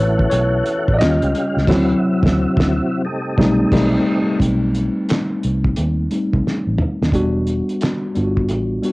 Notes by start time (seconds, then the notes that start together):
Already playing: E3 A3 C#4 E4 F#4 B4 C#5
0.00 A1
0.19 kick
0.30 B1 C#5, closed hi-hat
0.66 closed hi-hat
0.88 A1, kick
0.94 D5
0.99 D#2 C#3 G3 C#4 F4 D#5, snare, clap, closed hi-hat
1.22 C#2, closed hi-hat
1.35 closed hi-hat
1.57 C#2, snare
1.67 D2 C3 F#3 C4 E4, kick, snare, crash
2.23 D2, kick, snare
2.57 D2, kick, snare
3.05 G3 A3 D#4
3.38 B1 G3 A3 C4 D#4, kick, snare
3.72 B1 G3 A3 C4 D#4, kick, snare, crash
4.40 B1 G3 A3 C4 D#4, kick, closed hi-hat
4.75 closed hi-hat
5.09 snare, clap, closed hi-hat
5.43 C2, closed hi-hat
5.65 kick
5.76 D#2, closed hi-hat
6.11 G3 A3 C4 D#4, closed hi-hat
6.33 C2, kick
6.46 muted fingered electric bass stroke, snare
6.67 A1
6.78 mid tom
7.02 D#2, snare
7.12 E1 G3 B3 D4 F#4, kick, closed hi-hat
7.47 closed hi-hat
7.69 closed hi-hat
7.81 snare, clap, closed hi-hat
8.15 G1 G3 B3 D4 F4, closed hi-hat
8.24 F#4
8.37 kick
8.49 A1, closed hi-hat
8.82 G3 B3 D4 F#4, closed hi-hat